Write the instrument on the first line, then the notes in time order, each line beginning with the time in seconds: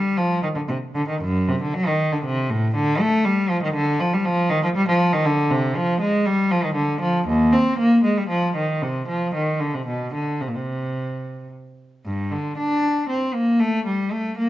cello
Already playing: G3
0.17 F3
0.43 D#3
0.56 D3
0.69 C3
0.95 D3
1.08 D#3
1.22 F#2
1.48 C3
1.62 D3
1.74 F#3
1.87 D#3
2.12 D3
2.25 C3
2.50 A2
2.75 D3
3.00 A3
3.25 G3
3.50 F3
3.63 D#3
3.74 D3
4.00 F3
4.14 G3
4.26 F3
4.50 D#3
4.63 F3
4.75 G3
4.88 F3
5.13 D#3
5.26 D3
5.51 C3
5.76 F3
6.01 G#3
6.26 G3
6.51 F3
6.64 D#3
6.75 D3
7.01 F3
7.27 D#2
7.53 C4
7.78 A#3
8.04 G#3
8.17 G3
8.29 F3
8.56 D#3
8.82 C3
9.08 F3
9.35 D#3
9.60 D3
9.74 C3
9.87 B2
10.14 D3
10.41 C3
10.48 A#2
10.55 C3
12.06 G2
12.31 D3
12.58 D4
13.09 C4
13.34 A#3
13.60 A3
13.86 G3
14.12 A3
14.38 A#3